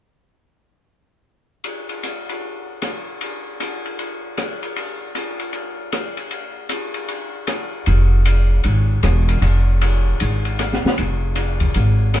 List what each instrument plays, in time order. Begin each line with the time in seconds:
1.64 ride
1.89 ride
2.03 hi-hat pedal, ride
2.29 ride
2.82 cross-stick, hi-hat pedal, ride
3.21 ride
3.60 hi-hat pedal, ride
3.86 ride
3.99 ride
4.37 cross-stick, hi-hat pedal, ride
4.63 ride
4.76 ride
5.15 hi-hat pedal, ride
5.39 ride
5.53 ride
5.92 cross-stick, hi-hat pedal, ride
6.17 ride
6.31 ride
6.69 hi-hat pedal, ride
6.94 ride
7.08 ride
7.47 cross-stick, hi-hat pedal, ride
7.86 upright bass F1, ride
8.25 hi-hat pedal, ride
8.64 upright bass G#1, ride
9.03 upright bass E1, cross-stick, hi-hat pedal, ride
9.28 ride
9.41 upright bass F1, ride
9.81 hi-hat pedal, ride
10.20 upright bass G#1, ride
10.45 ride
10.59 cross-stick, hi-hat pedal, ride
10.73 snare
10.85 muted upright bass stroke, snare
10.98 upright bass F1, ride
11.35 hi-hat pedal, ride
11.60 kick, ride
11.74 upright bass G#1, ride
12.14 cross-stick, hi-hat pedal, ride